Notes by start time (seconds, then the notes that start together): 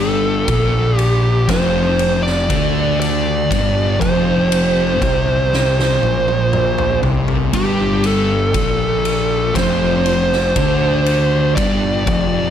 Already playing: G1 G2
0.00 A4
0.48 A#1 A#2, kick, ride
0.97 G4, ride
1.48 F1 F2 C5, kick, snare, ride
1.99 ride
2.23 D5, snare
2.49 D2 D3, kick, ride
3.00 D5, ride
3.49 G1 G2, kick, ride
4.00 F1 F2 C5, kick, ride
4.52 ride
5.01 C2 C3, kick, ride
5.53 snare
5.80 snare
6.02 A#1 A#2, high tom
6.28 high tom
6.53 mid tom
6.78 mid tom
7.03 C2 C3, floor tom
7.28 floor tom
7.53 G1 G2 G4, kick, ride
8.04 A4, ride
8.54 A#1 A#2, kick, ride
9.05 ride
9.54 F1 F2 C5, kick, snare, ride
10.06 ride
10.33 snare
10.55 D2 D3, kick, ride
11.06 ride
11.55 G1 G2 D5, kick, ride
12.06 F1 F2, kick, ride